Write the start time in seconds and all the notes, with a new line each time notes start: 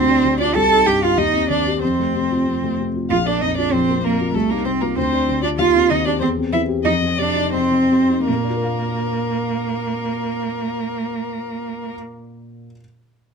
Already playing: D2 C4 C5
0.09 D4
0.25 D3
0.40 D4 F4 D5
0.55 C2 A4 A5
0.71 D#4
0.86 G2 G4 G5
1.02 F4 G4 F5
1.17 D#2 D#4 D#5
1.33 C4
1.49 D#3 D4 D5
1.67 G4
1.82 F2 C4 C5
2.00 A3
2.16 C3
2.31 F4
2.47 F2
2.64 A3
2.80 C3
2.96 F4
3.10 A#1 F4 F5
3.26 A#3 D4 D5
3.41 F2 D#4 D#5
3.57 D4 F4 D5
3.72 A#1 C4 C5
3.89 A#3
4.04 F2 A#3 A#4
4.20 F4
4.34 C2 A3 A4
4.50 A#3 D#4 A#4
4.65 C3 C4 C5
4.81 A#3 F4 A#4
4.96 D2 C4 C5
5.12 D4
5.29 D3
5.42 D4 F4 D5
5.58 D#2 F4 F5
5.74 C4
5.89 D#3 D#4 D#5
6.05 D4 G4 D5
6.20 E2 C4 C5
6.37 C4
6.53 E3 E4 E5
6.68 G4
6.85 F2 D#4 D#5
7.02 C4
7.18 C3 D4 D5
7.35 D#4
7.53 F2 C4 C5
7.72 C4
7.91 C3
8.10 D#4
8.27 A#2 A#3 A#4
8.35 A#3
8.43 D4
8.50 F4
8.57 A#4
8.64 F5